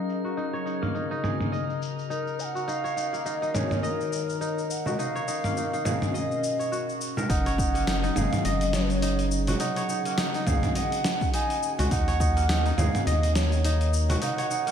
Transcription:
Already playing: F#3 A#3 C#4 D#4 G#4 A#4 D#5 F5
0.09 cabasa
0.24 F#4, cabasa
0.37 C#3 D#4, cabasa
0.53 C#5, cabasa
0.66 D#4, cabasa
0.82 A#3 G#5, mid tom, cabasa
0.90 F#4
0.95 D#4, cabasa
1.11 D#4, cabasa
1.23 G#4, mid tom, cabasa
1.40 mid tom, cabasa
1.52 D#5, cabasa
1.70 cabasa
1.82 cabasa
1.99 cabasa
2.10 D#4 A#4, cabasa
2.27 cabasa
2.40 G#5, cabasa
2.44 F#5
2.55 F#4, cabasa
2.68 D#3 D#4 F5, cabasa
2.84 C#5, cabasa
2.89 D#4
2.96 D#4, cabasa
3.13 A#3 A#4, cabasa
3.25 D#4 D#5, cabasa
3.42 D#4, cabasa
3.54 G#4 C#5, mid tom, frame drum, cabasa
3.59 A#5
3.71 mid tom, cabasa
3.83 A#4 D#5, cabasa
4.01 cabasa
4.13 cabasa
4.29 cabasa
4.41 D#4 A#4, cabasa
4.58 cabasa
4.70 F#5, cabasa
4.86 F#4 D#5, frame drum, cabasa
4.99 B2 D#4 F5, cabasa
5.07 C#4
5.15 C#5, cabasa
5.28 D#4, cabasa
5.44 A#3, mid tom, cabasa
5.57 D#4, cabasa
5.73 D#4, cabasa
5.85 G#4 D#5, mid tom, frame drum, cabasa
6.02 mid tom, cabasa
6.13 D#5, cabasa
6.31 cabasa
6.44 cabasa
6.59 C#5, cabasa
6.72 F#4, cabasa
6.89 cabasa
7.01 cabasa
7.17 A#4, frame drum, cabasa
7.29 F#1 F#3 D#4 F#5, kick, open hi-hat, cabasa
7.46 C#5, open hi-hat, cabasa
7.58 D#4, kick, cabasa
7.74 A#3, open hi-hat, cabasa
7.82 G#4 F#5
7.87 D#4, snare, open hi-hat, cabasa
8.03 D#4, open hi-hat, cabasa
8.16 F#1 G#4 F5, mid tom, frame drum, cabasa
8.33 mid tom, open hi-hat, cabasa
8.45 F#1 D#5, open hi-hat, cabasa
8.61 open hi-hat, cabasa
8.73 C#5, snare, cabasa
8.82 B4
8.90 C#5, open hi-hat, cabasa
9.02 D#4, open hi-hat, cabasa
9.19 open hi-hat, cabasa
9.31 cabasa
9.47 F#4, open hi-hat, frame drum, cabasa
9.60 C#3 D#4 F#5, open hi-hat, cabasa
9.76 C#5 G#5, open hi-hat, cabasa
9.89 D#4, cabasa
9.95 F#4
10.05 A#3, open hi-hat, cabasa
10.18 D#4, snare, open hi-hat, cabasa
10.34 D#4, open hi-hat, cabasa
10.46 C#2 G#4 F5, kick, mid tom, frame drum, cabasa
10.63 kick, mid tom, open hi-hat, cabasa
10.75 D#5 F#5, open hi-hat, cabasa
10.92 open hi-hat, cabasa
11.04 snare, cabasa
11.21 kick, open hi-hat, cabasa
11.34 D#4 G#5, open hi-hat, cabasa
11.50 open hi-hat, cabasa
11.63 cabasa
11.79 C#2 F#4, open hi-hat, frame drum, cabasa
11.91 D#2 D#3 D#4 F#5, kick, open hi-hat, cabasa
12.08 C#5, open hi-hat, cabasa
12.17 D#4, kick
12.21 cabasa
12.37 A#3, open hi-hat, cabasa
12.41 A#4
12.49 D#4, snare, open hi-hat, cabasa
12.66 D#4, open hi-hat, cabasa
12.77 D#2 G#4 F5, mid tom, frame drum, cabasa
12.95 A#5, mid tom, open hi-hat, cabasa
13.06 D#2 D#5, open hi-hat, cabasa
13.23 open hi-hat, cabasa
13.35 C#5, snare, cabasa
13.52 open hi-hat, cabasa
13.64 D#4, open hi-hat, cabasa
13.81 open hi-hat, cabasa
13.94 cabasa
14.09 F#4, open hi-hat, frame drum, cabasa
14.22 B2 D#4 F#5, open hi-hat, cabasa
14.38 C#5, open hi-hat, cabasa
14.51 D#4, cabasa
14.58 C#4 D#5
14.67 A#3, open hi-hat, cabasa

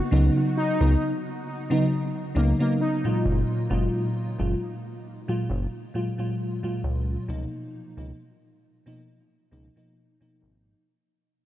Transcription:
0.11 C#2 C#3 F#3 B3 D#4
0.57 D#4
0.80 C#2 C#3 F#3 B3 D#4
1.70 C#3 F#3 B3 D#4
2.35 C#2 C#3 F#3 A#3 B3 D#4
2.59 C#3 F#3 A#3 B3 D#4
2.81 D#4
3.04 A#2 F#3 G#3 F4
3.25 F#1
3.70 F#1 A#2 F#3 G#3 F4
4.38 F#1 A#2 F#3 G#3 F4
5.28 A#2 F#3 G#3 F4
5.50 F#1
5.94 A#2 F#3 G#3 F4
6.18 A#2 F#3 G#3 F4
6.63 A#2 F#3 G#3 F4
6.84 C#2
7.28 C#2 B2 F3 A#3 D#4
7.97 C#2 B2 F3 A#3 D#4
8.86 B2 F3 A#3 D#4
9.51 C#2 B2 F3 A#3 D#4
9.76 B2 F3 A#3 D#4
10.21 B2 F3 A#3 D#4
10.42 G#1

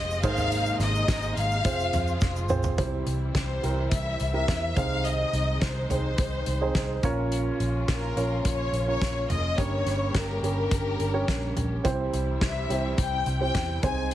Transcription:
Already playing: F1 C3 F3 G#3 F4 G4 G#4 C5 D#5
0.10 shaker
0.23 G#1 G#2 A#3 D#4 G#4 A#4 C5 F5, kick, crash, shaker
0.37 floor tom, shaker
0.51 closed hi-hat, shaker
0.66 shaker
0.79 G#1 D#5, snare, closed hi-hat, shaker
0.95 shaker
1.08 G#1, kick, snare, closed hi-hat, shaker
1.22 shaker
1.37 G#1 F5, closed hi-hat, shaker
1.51 shaker
1.65 F1 F3 C4 F4 G#4 C5, kick, closed hi-hat, shaker
1.79 shaker
1.93 F2, closed hi-hat, floor tom, shaker
2.07 shaker
2.21 F1, kick, snare, shaker
2.36 shaker
2.49 A#1 C4 F4 G#4 C5, mid tom, shaker
2.63 floor tom, shaker
2.78 C2 C3 E3 G3 C4 E4 G4 C5, kick, closed hi-hat
3.06 C2, closed hi-hat
3.35 C2 C5, kick, snare, closed hi-hat
3.63 C2 C4 E4 G4 A#4, closed hi-hat
3.91 C2 E5, kick, closed hi-hat
4.20 C2, closed hi-hat
4.33 C4 E4 G4 A#4 E5
4.48 E2, kick, snare, closed hi-hat
4.76 C2 C3 D#3 G#3 C4 D#4 G#4 C5 F5, kick, closed hi-hat, floor tom
5.05 D#5, closed hi-hat
5.33 C2, closed hi-hat
5.61 C2 C5, kick, snare, closed hi-hat
5.90 C2 C4 D#4 G#4 C5, closed hi-hat, floor tom
6.18 C2, kick, closed hi-hat
6.46 C2, closed hi-hat
6.61 C4 D#4 G#4 C5
6.75 C2, kick, snare, closed hi-hat
7.03 A#1 A#2 C#3 F3 A#3 C#4 F4 A#4 C#5, kick, closed hi-hat, floor tom
7.32 closed hi-hat
7.60 A#1, closed hi-hat
7.88 A#1 A#4, kick, snare, closed hi-hat
8.16 A#1 C#4 F4 A#4 C#5, closed hi-hat
8.45 A#1 C#5, kick, closed hi-hat
8.72 A#1, closed hi-hat
8.88 C#4 F4 A#4 C#5
9.01 A#1, kick, snare, closed hi-hat
9.29 F1 D#5, closed hi-hat, floor tom
9.58 G1 G2 G3 C#4 G4 A#4 C#5, kick, closed hi-hat
9.86 G1, snare, closed hi-hat
10.15 G1 A#4, kick, snare, closed hi-hat
10.42 G1 C#4 G4 A#4 C#5, closed hi-hat
10.71 G1, kick, closed hi-hat
10.99 G1, closed hi-hat
11.14 C#4 G4 A#4 C#5
11.28 A#1, kick, snare, closed hi-hat
11.56 A#1, closed hi-hat, floor tom
11.84 C2 C3 E3 G3 C4 E4 G4 C5, kick, closed hi-hat
12.13 C2, closed hi-hat
12.41 C2 E5, kick, snare, closed hi-hat
12.69 C2 C4 E4 G4 C5, closed hi-hat
12.98 C2 G5, kick, closed hi-hat
13.26 C2, closed hi-hat
13.40 C4 E4 G4 C5 G5
13.55 E2, kick, snare, closed hi-hat
13.83 C2 C3 D#3 G#3 C4 D#4 G#4 C5 G#5, kick, closed hi-hat, floor tom

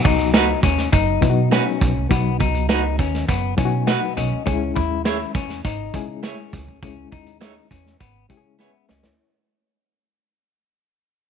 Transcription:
Already playing: F#3 B3 D#4 F#4
0.05 C#2 D#4, kick, closed hi-hat
0.19 closed hi-hat
0.34 D#4 F#4 B4, snare, closed hi-hat
0.63 D#2 C#4, kick, snare, closed hi-hat
0.78 snare, closed hi-hat
0.92 F#1 D#4, kick, closed hi-hat
1.21 B2 F#3 B3 D#4 E4, kick, closed hi-hat
1.30 F#4
1.51 C#4 D#4 F#4 B4, snare, closed hi-hat
1.81 B1, kick, closed hi-hat
1.97 C2
2.10 B1 F#3 B3 D#4 F#4, kick, closed hi-hat
2.40 C#2 D#4, kick, closed hi-hat
2.54 closed hi-hat
2.69 D#4 F#4 B4, snare, closed hi-hat
2.99 D#2 C#4, kick, closed hi-hat
3.14 snare, closed hi-hat
3.28 F#1 B3, kick, closed hi-hat
3.57 B2 F#3 B3 C#4 D#4 E4 G#5, kick, closed hi-hat
3.65 F#4
3.87 B3 D#4 F#4 B4 F#5, snare, closed hi-hat
4.17 B1 C#4 D#5, closed hi-hat
4.32 D2
4.46 C#2 G#3 C#4 D#4 G#4, kick, closed hi-hat
4.53 E4
4.76 D#2 E4, kick, closed hi-hat
5.05 E4 G#4 C#5, snare, closed hi-hat
5.35 E2 C#4, kick, snare, closed hi-hat
5.50 snare, closed hi-hat
5.65 G#1 D#4, kick, closed hi-hat
5.94 C#3 G#3 C#4 E4 G#4, kick, closed hi-hat
6.23 C#4 E4 G#4 C#5, snare, closed hi-hat
6.53 C#2, kick, closed hi-hat
6.68 D2
6.82 C#2 G#3 C#4 E4 G#4, kick, closed hi-hat
7.12 D#2 D#4, kick, closed hi-hat
7.26 closed hi-hat
7.41 D#4 E4 G#4 C#5, snare, closed hi-hat
7.71 E2 C#4, kick, closed hi-hat
7.86 snare
8.00 G#1 B3, kick, closed hi-hat
8.29 C#3 G#3 C#4 E4 G4, kick, closed hi-hat
8.37 G#4
8.59 B3 E4 G#4 B4 C#5 G#5, snare
8.73 G#4 E5
8.89 C#2 C#4 F#4 D#5, snare
9.03 D2 E4 C#5, snare

